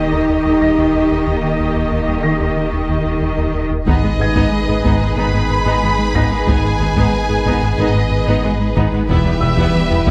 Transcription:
Already playing: sub bass D#1, cello section D#3, analog synth pad D#3 D#4 G4 D#5, french horn section D#4, viola section G4 D#5
0.13 analog synth bass D#2, synth pluck D#4
0.29 analog synth bass D#2, synth pluck D#3
0.45 analog synth bass D#2, synth pluck G3
0.61 analog synth bass D#2, synth pluck G3, grand piano A#6
0.78 analog synth bass D#2, synth pluck D#3
0.95 analog synth bass D#2
1.10 analog synth bass D#2, synth pluck D#4
1.27 analog synth bass D#2, synth pluck D#3, french horn section A#3
1.43 analog synth bass D#3
1.60 analog synth bass D#2
1.75 analog synth bass D#2, synth pluck D#4
1.92 analog synth bass D#2, synth pluck D#3
2.08 analog synth bass D#2, synth pluck G3
2.23 analog synth bass D#3, synth pluck A#3, grand piano A#6
2.40 analog synth bass D#2, synth pluck D#3
2.57 analog synth bass D#3, synth pluck A#3
2.73 analog synth bass D#2, synth pluck D#4
2.89 analog synth bass D#2, synth pluck D#3
3.06 analog synth bass D#2, synth pluck G3
3.22 analog synth bass D#2, synth pluck G3
3.38 analog synth bass D#2, synth pluck D#3
3.54 analog synth bass D#2
3.71 analog synth bass D#2, synth pluck D#4
3.86 double bass section G#1, sub bass G#1, cello section G#2, analog synth bass G#2, analog synth pad D#3 D#4 G#4 B4, synth pluck G#3, french horn section B3 G#4, viola section B3 D#4, violin section G#4 B4 D#5, taiko
4.03 cello section G#2, analog synth bass G#2, viola section G#3 B3, synth pluck G#4
4.19 double bass section G#1, cello section G#2, analog synth bass G#2, viola section B3, synth pluck G#4, grand piano G#6
4.35 analog synth bass G#2, cello section G#2, synth pluck G#3, viola section B3 D#4, taiko
4.52 analog synth bass G#3
4.68 cello section G#2, analog synth bass G#2, viola section B3, synth pluck G#4
4.84 double bass section G#1, analog synth bass G#2, cello section G#2, synth pluck G#3, viola section B3 D#4, taiko
5.00 cello section G#2, analog synth bass G#2, viola section G#3 B3, synth pluck G#4
5.17 double bass section G#1, cello section G#2, analog synth bass G#2, synth pluck G#3, viola section B3 D#4, violin section B5
5.33 analog synth bass G#2, cello section G#2, viola section G#3 B3, synth pluck B3
5.50 analog synth bass G#2
5.66 analog synth bass G#2, cello section G#2, synth pluck G#3, viola section B3 D#4
5.82 double bass section G#1, cello section G#2, analog synth bass G#3, viola section G#3 B3, synth pluck D#4
5.99 analog synth bass G#3
6.15 double bass section G#1, cello section G#2, analog synth bass G#2, synth pluck G#3, viola section B3 D#4, grand piano A#6, taiko
6.31 cello section G#2, viola section G#3 B3, analog synth bass G#3, synth pluck D#4
6.47 double bass section G#1, cello section G#2, analog synth bass G#2, synth pluck G#3, viola section B3 D#4, violin section G#5, taiko
6.64 cello section G#2, analog synth bass G#2, viola section G#3 B3, synth pluck G#4
6.80 double bass section G#1, cello section G#2, analog synth bass G#2, viola section B3, synth pluck G#4
6.96 cello section G#2, analog synth bass G#2, synth pluck G#3, viola section B3 D#4, taiko
7.13 analog synth bass G#3
7.29 analog synth bass G#2, cello section G#2, viola section B3, synth pluck G#4
7.45 double bass section G#1, cello section G#2, analog synth bass G#2, synth pluck G#3, viola section B3 D#4, taiko
7.63 cello section G#2, analog synth bass G#2, viola section G#3 B3
7.78 double bass section G#1, cello section G#2, analog synth bass G#2, synth pluck G#3, viola section B3 D#4, violin section D#5
7.95 cello section G#2, analog synth bass G#2, viola section G#3 B3, synth pluck B3
8.11 analog synth bass G#2
8.27 cello section G#2, analog synth bass G#2, synth pluck G#3, viola section B3 D#4
8.43 double bass section G#1, cello section G#2, viola section G#3 B3, analog synth bass G#3, synth pluck D#4
8.60 analog synth bass G#3
8.76 double bass section G#1, cello section G#2, analog synth bass G#2, synth pluck G#3, viola section B3 D#4, taiko
8.92 cello section G#2, viola section G#3 B3, analog synth bass G#3, synth pluck D#4
9.09 double bass section E1, sub bass E1, cello section E2, analog synth bass E2, synth pluck E3, analog synth pad G3 B3 E4 B4, viola section B3 E4, french horn section B3 G4, violin section G4 B4 E5, taiko
9.25 cello section E2, analog synth bass E2, viola section G3 B3, synth pluck E4
9.41 double bass section E1, cello section E2, analog synth bass E2, viola section B3, synth pluck E4, grand piano E6
9.57 analog synth bass E2, cello section E2, synth pluck E3, viola section B3 E4, taiko
9.75 analog synth bass E3
9.90 analog synth bass E2, cello section E2, viola section B3, synth pluck E4
10.06 double bass section E1, cello section E2, analog synth bass E2, synth pluck E3, viola section B3 E4, taiko

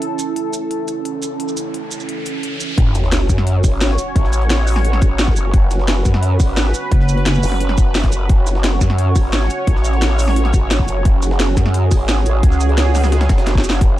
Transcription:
Already playing: analog synth pad C#4 E4 A4
0.02 closed hi-hat, riser
0.19 closed hi-hat, shaker
0.36 closed hi-hat
0.54 closed hi-hat, shaker
0.71 closed hi-hat
0.88 closed hi-hat, shaker
1.05 closed hi-hat
1.23 closed hi-hat, shaker
1.40 closed hi-hat
1.48 shaker
1.57 closed hi-hat, shaker
1.74 closed hi-hat
1.91 closed hi-hat, shaker
2.00 shaker
2.09 closed hi-hat
2.26 closed hi-hat, shaker
2.43 closed hi-hat
2.60 closed hi-hat, shaker
2.78 wobble bass F#1, analog synth pad C#4 F#4 C#5, kick, closed hi-hat, sub drop
2.95 snare, closed hi-hat, shaker
3.04 snare
3.12 snare, closed hi-hat
3.29 wobble bass F#2, kick, snare, closed hi-hat, shaker
3.38 snare
3.47 closed hi-hat
3.64 wobble bass G#1, kick, closed hi-hat, open hi-hat, shaker
3.81 snare, closed hi-hat
3.90 snare
3.98 closed hi-hat, shaker
4.16 wobble bass A1, kick, closed hi-hat
4.24 snare
4.33 closed hi-hat, shaker
4.42 closed hi-hat
4.50 snare, closed hi-hat
4.67 closed hi-hat, open hi-hat, shaker
4.76 snare
4.85 closed hi-hat
4.93 snare, closed hi-hat
5.02 wobble bass G#1, kick, closed hi-hat, shaker
5.19 snare, closed hi-hat
5.28 kick
5.36 wobble bass F#1, closed hi-hat, shaker
5.54 wobble bass F#1, analog synth pad B4, kick, closed hi-hat
5.71 snare, closed hi-hat, shaker
5.80 snare
5.88 snare, closed hi-hat
6.05 wobble bass F#2, kick, snare, closed hi-hat, shaker
6.14 snare
6.23 closed hi-hat
6.40 wobble bass G#1, kick, closed hi-hat, open hi-hat, shaker
6.57 snare, closed hi-hat
6.66 snare
6.74 closed hi-hat, shaker
6.92 wobble bass F#1, kick, closed hi-hat
7.00 snare
7.09 closed hi-hat, shaker
7.17 closed hi-hat
7.26 snare, closed hi-hat
7.35 shaker
7.43 wobble bass F#1, closed hi-hat, open hi-hat, shaker
7.52 snare
7.60 closed hi-hat
7.69 snare, closed hi-hat
7.78 kick, closed hi-hat, shaker
7.95 snare, closed hi-hat
7.99 snare, closed hi-hat
8.04 kick, snare, closed hi-hat
8.12 closed hi-hat, shaker
8.29 wobble bass F#1, analog synth pad C#5, kick, closed hi-hat
8.47 snare, closed hi-hat, shaker
8.55 snare
8.64 snare, closed hi-hat
8.81 wobble bass F#2, kick, snare, closed hi-hat, shaker
8.90 snare
8.98 closed hi-hat
9.16 wobble bass G#1, kick, closed hi-hat, open hi-hat, shaker
9.33 snare, closed hi-hat
9.42 snare
9.50 closed hi-hat, shaker
9.67 wobble bass A1, kick, closed hi-hat
9.76 snare
9.85 closed hi-hat, shaker
9.93 closed hi-hat
10.02 snare, closed hi-hat
10.19 closed hi-hat, open hi-hat, shaker
10.28 snare
10.36 closed hi-hat
10.45 snare, closed hi-hat
10.54 wobble bass G#1, kick, closed hi-hat, shaker
10.71 snare, closed hi-hat
10.79 kick
10.88 wobble bass F#1, closed hi-hat, shaker
11.05 wobble bass F#1, analog synth pad G#4, kick, closed hi-hat
11.23 snare, closed hi-hat, shaker
11.31 snare
11.40 snare, closed hi-hat
11.57 wobble bass F#2, kick, snare, closed hi-hat, shaker
11.66 snare
11.74 closed hi-hat
11.91 wobble bass G#1, kick, closed hi-hat, open hi-hat, shaker
12.09 snare, closed hi-hat
12.17 snare
12.26 wobble bass A1, closed hi-hat, shaker
12.43 wobble bass C#2, kick, closed hi-hat
12.52 snare, shaker
12.60 closed hi-hat, shaker
12.69 closed hi-hat
12.78 snare, closed hi-hat
12.95 snare, closed hi-hat, open hi-hat, shaker
13.04 snare, shaker
13.12 snare, closed hi-hat
13.21 snare, closed hi-hat
13.29 wobble bass F#1, kick, snare, closed hi-hat, shaker
13.38 snare, closed hi-hat
13.47 snare, closed hi-hat
13.55 kick, snare
13.64 snare, closed hi-hat, shaker
13.70 snare, closed hi-hat
13.81 wobble bass F#1, analog synth pad B4, kick, closed hi-hat

